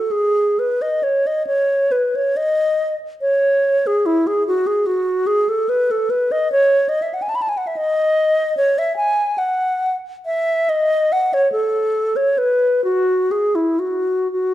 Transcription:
0.00 0.13 A4 medium
0.11 0.61 G#4 medium
0.59 0.83 B4 medium
0.82 1.05 D#5 medium
1.03 1.28 C#5 medium
1.27 1.46 D#5 medium
1.47 1.93 C#5 medium
1.92 2.17 B4 medium
2.15 2.38 C#5 medium
2.37 2.96 D#5 medium
3.21 3.88 C#5 medium
3.87 4.07 G#4 medium
4.06 4.29 E4 medium
4.27 4.47 G#4 medium
4.48 4.68 F#4 medium
4.67 4.88 G#4 medium
4.86 5.28 F#4 medium
5.27 5.50 G#4 medium
5.49 5.71 A4 medium
5.69 5.93 B4 medium
5.91 6.12 A4 medium
6.10 6.33 B4 medium
6.32 6.51 D#5 medium
6.52 6.90 C#5 medium
6.89 7.04 D#5 medium
7.02 7.15 E5 medium
7.14 7.24 F#5 medium
7.22 7.30 G#5 medium
7.29 7.37 A5 medium
7.35 7.43 B5 medium
7.42 7.50 A5 medium
7.49 7.59 G#5 medium
7.57 7.69 F#5 medium
7.67 7.78 E5 medium
7.77 8.57 D#5 loud
8.57 8.80 C#5 medium
8.78 8.96 E5 medium
8.96 9.40 G#5 medium
9.38 9.95 F#5 medium
10.26 10.71 E5 medium
10.69 11.14 D#5 medium
11.12 11.35 F#5 medium
11.34 11.52 C#5 medium
11.52 12.18 A4 medium
12.16 12.39 C#5 medium
12.38 12.84 B4 medium
12.84 13.33 F#4 medium
13.31 13.57 G#4 medium
13.55 13.81 E4 soft
13.79 14.31 F#4 medium
14.32 14.54 F#4 medium

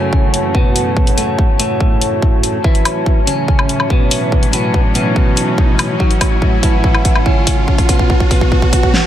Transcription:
0.00 2.60 F#2 medium
0.00 0.46 C#3 medium
0.00 2.60 C#3 medium
0.00 2.60 E3 medium
0.00 2.60 A3 medium
0.00 0.46 C#4 medium
0.00 8.94 F#4 medium
0.00 8.94 C#5 medium
0.00 2.64 F#5 medium
0.00 8.94 A5 medium
0.00 riser medium
0.13 kick medium
0.34 closed hi-hat medium
0.54 1.09 B2 medium
0.54 1.09 B3 medium
0.54 kick medium
0.76 closed hi-hat medium
0.97 kick medium
1.07 closed hi-hat soft
1.17 1.43 A2 medium
1.17 1.43 A3 medium
1.17 closed hi-hat medium
1.39 kick medium
1.59 2.56 A2 medium
1.59 2.56 A3 medium
1.59 closed hi-hat medium
1.80 kick medium
2.01 closed hi-hat medium
2.22 kick loud
2.43 closed hi-hat medium
2.64 8.90 A2 medium
2.64 3.19 E3 medium
2.64 8.90 E3 medium
2.64 8.90 F#3 medium
2.64 8.90 C#4 medium
2.64 3.19 E4 medium
2.64 kick loud
2.75 closed hi-hat soft
2.85 closed hi-hat medium
2.85 low woodblock medium
3.06 kick loud
3.12 6.08 E5 medium
3.27 3.82 C#3 medium
3.27 3.82 C#4 medium
3.27 closed hi-hat medium
3.48 kick loud
3.59 low woodblock medium
3.69 closed hi-hat medium
3.80 low woodblock medium
3.90 4.45 B2 medium
3.90 4.45 B3 medium
3.90 kick loud
4.11 open hi-hat medium
4.32 kick loud
4.43 closed hi-hat soft
4.53 4.78 B2 medium
4.53 4.78 B3 medium
4.53 closed hi-hat medium
4.74 kick loud
4.95 5.92 B2 medium
4.95 5.92 B3 medium
4.95 closed hi-hat medium
5.16 kick loud
5.37 closed hi-hat medium
5.58 kick loud
5.79 open hi-hat loud
5.79 low woodblock medium
5.95 8.94 F#5 medium
6.00 6.55 F#3 medium
6.00 6.55 F#4 medium
6.00 kick loud
6.11 closed hi-hat soft
6.21 kick loud
6.21 closed hi-hat medium
6.21 low woodblock medium
6.42 kick loud
6.63 7.18 E3 medium
6.63 7.18 E4 medium
6.63 kick loud
6.63 closed hi-hat medium
6.84 kick loud
6.95 low woodblock medium
7.05 kick loud
7.05 closed hi-hat medium
7.16 low woodblock medium
7.26 7.81 C#3 medium
7.26 7.81 C#4 medium
7.26 kick loud
7.47 kick loud
7.47 open hi-hat loud
7.68 kick loud
7.78 kick medium
7.78 closed hi-hat soft
7.89 8.14 B2 medium
7.89 8.14 B3 medium
7.89 kick loud
7.89 closed hi-hat medium
7.99 kick medium
8.10 kick loud
8.20 kick loud
8.31 8.94 B2 medium
8.31 8.94 B3 medium
8.31 kick loud
8.31 open hi-hat medium
8.41 kick medium
8.52 kick loud
8.52 swell medium
8.62 kick medium
8.73 kick loud
8.73 closed hi-hat medium
8.83 kick medium
8.94 snare medium

